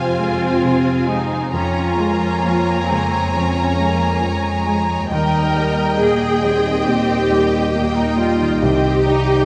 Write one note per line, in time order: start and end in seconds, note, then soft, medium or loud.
0.00 1.50 F2 soft
0.00 0.63 C3 soft
0.00 1.54 F3 soft
0.00 0.18 G#3 soft
0.00 1.32 G#3 soft
0.00 0.42 C4 soft
0.00 1.49 C4 medium
0.00 0.43 F4 soft
0.00 1.09 F4 medium
0.00 0.20 G#4 soft
0.00 0.65 C5 soft
0.00 1.49 C5 medium
0.00 1.49 F5 soft
0.00 1.50 G#5 medium
0.18 0.90 G#3 soft
0.18 0.87 G#4 soft
0.43 1.10 C4 soft
0.63 1.35 C3 soft
0.63 1.58 C5 medium
0.88 2.21 G#4 soft
1.07 1.52 G#3 soft
1.07 1.58 C4 soft
1.07 1.53 D#4 medium
1.53 3.28 F2 soft
1.53 5.06 F2 medium
1.53 3.34 F3 soft
1.53 1.98 C#4 medium
1.53 2.85 F4 medium
1.53 5.06 C#5 medium
1.53 5.06 G#5 medium
1.53 5.06 A#5 soft
1.78 3.11 G#3 soft
1.98 2.70 G#3 soft
1.98 2.43 G#3 soft
1.98 3.79 A#4 soft
2.22 2.66 G#4 soft
2.43 3.15 F3 soft
2.43 3.33 A#3 medium
2.43 5.15 C#6 soft
2.68 4.01 G#4 soft
2.88 5.15 C#3 soft
2.88 3.59 G#3 soft
2.88 3.33 C4 medium
3.13 4.89 G#3 soft
3.34 4.04 F3 soft
3.34 5.15 F3 soft
3.34 3.78 C4 soft
3.34 4.66 C#4 medium
3.58 4.66 C#4 soft
3.79 4.48 G#3 soft
3.79 4.21 A#3 medium
3.79 5.56 A#4 soft
4.02 4.45 G#4 soft
4.21 4.92 F3 soft
4.21 5.11 G#3 medium
4.21 5.15 C#5 soft
4.46 5.15 G#4 soft
4.65 5.10 G#3 soft
4.65 5.15 C#4 soft
4.90 5.15 G#3 soft
5.10 8.61 D#2 medium
5.10 6.82 D#2 medium
5.10 6.87 D#3 soft
5.10 5.98 G3 soft
5.10 5.94 A#4 medium
5.10 8.57 D#5 medium
5.10 8.57 G5 medium
5.10 8.58 G5 medium
5.35 9.25 A#3 soft
5.56 6.25 G3 soft
5.56 7.30 A#4 soft
5.79 6.20 G4 soft
5.98 6.68 A#2 soft
5.98 6.42 A#3 medium
5.98 6.85 G#4 medium
5.98 7.73 D#5 soft
6.22 7.51 G4 soft
6.43 7.12 G3 soft
6.43 7.74 C4 medium
6.43 7.08 D#4 soft
6.86 7.57 A#2 soft
6.86 8.39 D#3 soft
6.86 7.95 G4 medium
7.10 8.17 D#4 soft
7.30 8.00 G3 soft
7.30 8.65 A#4 soft
7.52 7.95 G4 soft
7.74 8.44 A#2 soft
7.74 8.60 A#3 medium
7.74 9.45 D#5 soft
7.97 8.18 D#4 medium
7.97 9.45 G4 soft
8.17 8.61 G3 soft
8.17 9.04 D#4 soft
8.17 8.61 F4 medium
8.41 9.45 D#3 soft
8.61 9.45 C2 medium
8.61 9.45 C3 medium
8.61 9.05 C4 medium
8.61 9.45 G4 medium
8.61 9.45 D#5 medium
8.61 9.45 G5 medium
8.84 9.45 C4 soft
9.05 9.45 G3 soft
9.05 9.45 D#4 soft
9.05 9.45 D#4 medium
9.27 9.45 C5 medium